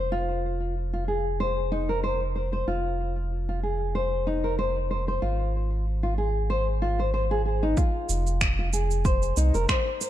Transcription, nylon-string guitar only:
0.00 0.10 C5 medium
0.12 0.74 F4 medium
0.93 1.06 F4 medium
1.08 1.38 G#4 medium
1.40 1.70 C5 medium
1.72 1.88 D#4 medium
1.89 2.03 A#4 medium
2.03 2.20 C5 medium
2.35 2.51 C5 medium
2.53 2.66 C5 medium
2.68 3.30 F4 medium
3.49 3.62 F4 medium
3.63 3.93 G#4 medium
3.95 4.25 C5 medium
4.27 4.43 D#4 medium
4.44 4.58 A#4 medium
4.59 4.75 C5 medium
4.91 5.06 C5 medium
5.08 5.21 C5 medium
5.22 5.85 F4 medium
6.03 6.16 F4 medium
6.18 6.48 G#4 medium
6.50 6.66 C5 medium
6.82 6.98 F4 medium
6.99 7.12 C5 medium
7.14 7.24 C5 medium
7.31 7.44 G#4 medium
7.45 7.62 G#4 medium
7.63 7.76 D#4 medium
7.77 8.40 F4 loud
8.59 8.72 F4 medium
8.73 9.04 G#4 medium
9.05 9.36 C5 loud
9.37 9.54 D#4 loud
9.54 9.68 A#4 medium
9.69 9.86 C5 loud
10.01 10.10 C5 medium

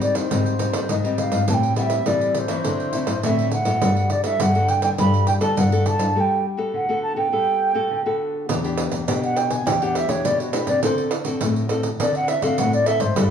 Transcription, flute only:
0.02 0.17 D5 medium
0.15 0.91 C5 medium
0.90 1.20 D#5 medium
1.19 1.48 F5 medium
1.49 1.54 A5 medium
1.53 1.75 G5 medium
1.77 1.83 F#5 medium
1.82 2.08 E5 medium
2.07 2.35 D5 medium
2.35 3.25 C5 medium
2.35 2.40 D5 medium
3.24 3.52 E5 medium
3.52 4.12 F#5 medium
4.11 4.24 D5 medium
4.24 4.43 E5 medium
4.41 4.71 F#5 medium
4.69 4.83 G5 medium
4.83 4.89 G5 loud
4.99 5.26 B5 loud
5.27 5.33 G5 medium
5.41 5.56 A5 loud
5.58 5.88 F#5 medium
5.86 6.16 A5 medium
6.16 6.21 A5 medium
6.20 6.45 G5 medium
6.74 7.01 F#5 medium
7.02 7.16 A5 medium
7.16 8.15 G5 medium
9.23 9.38 F#5 medium
9.37 9.52 G5 medium
9.51 9.69 G#5 medium
9.67 9.84 G5 medium
9.82 9.97 F#5 medium
9.95 10.10 E5 medium
10.09 10.26 C#5 medium
10.25 10.41 D5 medium
10.40 10.54 F#4 medium
10.53 10.69 B4 medium
10.68 10.82 D5 medium
10.84 11.01 C5 medium
12.00 12.17 D5 medium
12.16 12.30 F#5 loud
12.28 12.44 E5 medium
12.42 12.60 F5 medium
12.58 12.75 F#5 medium
12.74 12.88 D5 medium
12.86 13.02 E5 loud
13.01 13.18 C5 medium
13.16 13.30 B4 medium

